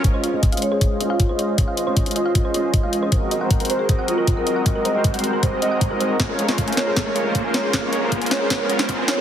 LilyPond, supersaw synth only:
\new Staff \with { instrumentName = "Supersaw synth" } { \time 4/4 \key des \major \tempo 4 = 156 <aes des' f' c'' ees''>8. <aes des' f' c'' ees''>8 <aes des' f' c'' ees''>8. <aes des' f' c'' ees''>8 <aes des' f' c'' ees''>8. <aes des' f' c'' ees''>8. | <aes des' f' c'' ees''>8. <aes des' f' c'' ees''>8 <aes des' f' c'' ees''>8. <aes des' f' c'' ees''>8 <aes des' f' c'' ees''>8. <aes des' f' c'' ees''>8. | <aes c' ges' bes' ees''>8. <aes c' ges' bes' c''>8 <aes c' ges' bes' c''>8. <aes c' ges' bes' ees''>8 <aes c' ges' bes' ees''>8. <aes c' ges' bes' ees''>8. | <aes c' ges' bes' ees''>8. <aes c' ges' bes' c''>8 <aes c' ges' bes' c''>8. <aes c' ges' bes' ees''>8 <aes c' ges' bes' ees''>8. <aes c' ges' bes' ees''>8. |
<aes des' f' bes' des''>8. <aes des' f' bes' c''>8 <aes des' f' bes' c''>8. <aes des' f' bes' des''>8. <aes des' f' bes' c''>8 <aes des' f' bes' c''>8. | <aes des' f' bes' des''>8. <aes des' f' bes' c''>8 <aes des' f' bes' c''>8. <aes des' f' bes' des''>8. <aes des' f' bes' c''>8 <aes des' f' bes' c''>8. | }